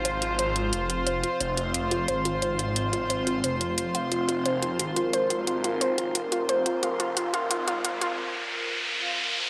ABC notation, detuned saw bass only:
X:1
M:4/4
L:1/8
Q:1/4=177
K:Fm
V:1 name="Detuned saw bass" clef=bass
A,,,4 F,,,3 z | F,,,2 F,,,2 A,,,4- | A,,,4 F,,,4 | F,,,2 F,,,2 A,,,4- |
A,,,4 F,,,3 z | F,,,2 F,,,2 A,,,4 | z8 |]